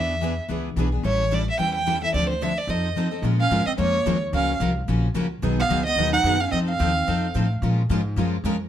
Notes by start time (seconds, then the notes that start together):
Already playing: E2 E3 B3 D4 G#4 B4 E5
0.21 E3 B3 D4 G#4 B4
0.48 C#2 E3 B3 D4 G#4 B4
0.76 B1 E3 B3 D4 G#4 B4
0.92 B3 D4 G#4
1.03 A1 E3 G3 C#4 E4 A4 C#5
1.32 E3 G3 C#4 E4 A4 D5
1.50 E5
1.58 E2 E3 G3 C#4 E4 A4 G5
1.75 G5
1.87 E3 G3 C#4 E4 A4
2.02 C#4 E4 A4 E5
2.14 D2 D3 F3 C4 D4 A4 D5
2.30 C5
2.42 D3 F3 C4 D4 A4 E5
2.58 D5
2.67 F2 F3 C4 D#4 A4 D#5
2.96 F3 C4 D#4 A4
3.11 C4 D#4 A4
3.22 A#2 F3 G#3 C#4 F4 A#4
3.40 C#4 F5
3.51 G#2 F3 G#3 C#4 F4 A#4
3.66 C4 D#5, muted upright bass stroke
3.78 F2 F3 G#3 A#3 C#4 F4 A#4 C#5
4.06 D#2 F3 G#3 C#4 F4 A#4
4.33 C#2 C#3 F3 F#3 A#3 C#4 F4 F#4 A#4 F5
4.60 C2 C#3 F3 F#3 A#3 C#4 F4 F#4 A#4
4.88 A#1 C#3 F3 F#3 A#3 C#4 F4 F#4 A#4
5.14 C#2 C#3 F3 F#3 A#3 C#4 F4 F#4 A#4
5.42 B1 B2 D#3 F#3 B3 D#4 G#4
5.59 B3 F5
5.69 C#2 B2 D#3 F#3 B3 D#4 G#4
5.86 B3 D#5
5.96 D#2 B2 D#3 F#3 B3 D#4 G#4
6.12 D#4 F#5
6.24 F#2 B2 D#3 F#3 B3 D#4 G#4
6.41 C#4 F5
6.51 F2 F3 C4 D#4 A4 D#5
6.68 C4 F5
6.80 D#2 F3 C4 D#4 A4
7.07 F2 F3 C4 D#4 A4
7.35 A2 F3 C4 D#4 A4
7.62 A#2 F3 G#3 C#4 F4 A#4
7.89 G#2 F3 G#3 C#4 F4 A#4
8.16 F#2 F3 G#3 C#4 F4 A#4
8.44 F2 F3 G#3 C#4 F4 A#4